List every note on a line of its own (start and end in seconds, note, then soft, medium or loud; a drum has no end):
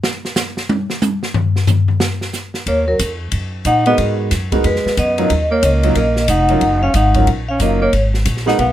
0.03 snare loud
0.25 snare soft
0.36 snare loud
0.36 hi-hat pedal medium
0.57 snare soft
0.69 high tom loud
0.90 snare medium
1.02 hi-hat pedal medium
1.02 high tom loud
1.23 snare soft
1.34 floor tom loud
1.56 snare soft
1.67 floor tom loud
1.67 hi-hat pedal medium
1.88 floor tom medium
2.00 snare loud
2.21 snare soft
2.33 snare soft
2.33 hi-hat pedal medium
2.54 snare soft
2.66 2.98 D#2 medium
2.66 2.86 A#3 medium
2.66 2.87 C#5 medium
2.66 kick soft
2.66 ride medium
2.87 2.99 F#3 soft
2.87 2.99 A#4 medium
2.99 3.31 F2 medium
2.99 kick soft
2.99 hi-hat pedal medium
2.99 ride medium
3.32 3.64 F#2 medium
3.32 kick soft
3.32 ride medium
3.65 3.97 A#2 medium
3.65 3.85 D#4 medium
3.65 3.86 F#5 medium
3.65 kick soft
3.65 hi-hat pedal soft
3.65 ride medium
3.86 4.29 G#3 medium
3.86 3.98 B3 medium
3.86 4.29 B3 medium
3.86 4.29 D#4 medium
3.86 4.29 F#4 medium
3.86 4.29 A#4 medium
3.86 3.94 D#5 loud
3.86 ride soft
3.98 4.30 G#2 medium
3.98 kick soft
3.98 ride medium
4.31 4.63 F#2 medium
4.31 kick soft
4.31 snare soft
4.31 hi-hat pedal medium
4.31 ride medium
4.52 4.63 G#3 medium
4.52 4.63 B3 medium
4.52 4.63 D#4 medium
4.52 4.63 F#4 medium
4.52 4.63 A#4 medium
4.52 kick medium
4.52 ride soft
4.64 4.83 F2 medium
4.64 4.95 G#3 medium
4.64 4.95 B4 medium
4.64 kick soft
4.64 ride medium
4.76 snare soft
4.85 muted upright bass stroke soft
4.85 snare soft
4.97 5.29 F#2 medium
4.97 5.28 B3 medium
4.97 5.48 D#5 medium
4.97 kick soft
4.97 hi-hat pedal soft
4.97 ride medium
5.18 5.29 F#3 medium
5.18 5.29 C#4 medium
5.18 5.29 D#4 medium
5.18 5.29 F4 medium
5.18 5.29 A#4 medium
5.18 ride soft
5.30 5.62 D#2 medium
5.30 kick soft
5.30 ride medium
5.51 5.62 A#3 medium
5.51 5.63 C#5 medium
5.63 5.95 C#2 medium
5.63 5.94 A#3 medium
5.63 5.94 D#5 medium
5.63 kick soft
5.63 hi-hat pedal medium
5.63 ride medium
5.83 5.95 F#3 medium
5.83 5.95 C#4 medium
5.83 5.95 D#4 medium
5.83 5.95 F4 medium
5.83 5.95 A#4 medium
5.83 ride soft
5.95 6.27 A#1 medium
5.95 6.27 A#3 medium
5.95 6.28 D#5 medium
5.95 kick soft
5.95 ride medium
6.16 snare soft
6.28 6.60 F1 medium
6.28 6.79 D#4 medium
6.28 6.79 F#5 medium
6.28 kick soft
6.28 hi-hat pedal medium
6.28 ride medium
6.49 6.60 F#3 medium
6.49 6.60 C#4 medium
6.49 6.61 D#4 medium
6.49 6.61 F4 medium
6.49 6.61 A#4 medium
6.49 ride soft
6.61 6.93 F#1 medium
6.61 kick soft
6.61 ride medium
6.83 6.94 C#4 medium
6.83 6.94 F5 medium
6.94 7.26 G#1 medium
6.94 7.26 D#4 medium
6.94 7.26 F#5 medium
6.94 kick soft
6.94 hi-hat pedal medium
6.94 ride medium
7.14 7.26 F#3 medium
7.14 7.26 C#4 medium
7.14 7.26 D#4 medium
7.14 7.26 F4 medium
7.14 7.27 A#4 medium
7.14 kick medium
7.14 ride soft
7.27 7.59 A#1 medium
7.27 kick soft
7.27 ride medium
7.49 7.60 C#4 medium
7.49 7.60 F5 medium
7.60 7.92 F#1 medium
7.60 7.79 F#3 medium
7.60 7.80 A#3 soft
7.60 7.79 C#4 medium
7.60 7.79 D#4 medium
7.60 7.79 F4 medium
7.60 7.79 A#4 medium
7.60 7.81 D#5 medium
7.60 kick soft
7.60 hi-hat pedal soft
7.60 ride medium
7.82 7.93 A#3 medium
7.82 7.93 C#5 medium
7.93 8.25 G#1 medium
7.93 kick soft
7.93 ride medium
8.14 snare soft
8.25 8.58 A#1 medium
8.25 kick soft
8.25 hi-hat pedal soft
8.25 ride medium
8.37 snare soft
8.46 8.57 G#3 medium
8.46 8.57 B3 medium
8.46 8.57 D#4 medium
8.46 8.58 D#4 medium
8.46 8.57 F#4 medium
8.46 8.58 A#4 medium
8.46 8.59 F#5 medium
8.46 snare soft
8.59 8.72 B1 medium
8.59 8.72 B3 medium
8.59 8.72 F5 medium
8.59 kick soft
8.59 ride soft